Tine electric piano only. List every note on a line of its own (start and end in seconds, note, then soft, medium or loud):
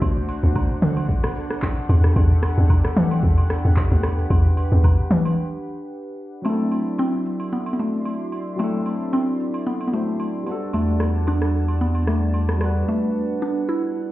6.42 8.53 F#3 medium
6.42 8.54 C4 medium
6.42 8.55 D4 medium
6.48 8.56 E4 medium
6.48 8.57 A4 medium
8.56 9.89 F#3 medium
8.56 9.90 C4 medium
8.56 9.91 D4 medium
8.62 9.92 E4 medium
8.62 9.93 A4 medium
9.92 10.46 F#3 soft
9.92 10.46 C4 soft
9.92 10.46 D4 soft
9.92 10.47 E4 soft
9.92 10.48 C5 medium
10.43 12.55 G3 medium
10.43 12.56 B3 medium
10.43 12.57 D4 medium
10.49 12.58 F#4 medium
10.49 12.59 A4 medium
12.58 14.12 G3 medium
12.58 14.12 B3 medium
12.62 14.12 D4 medium
12.62 14.12 F#4 medium
12.62 14.12 B4 medium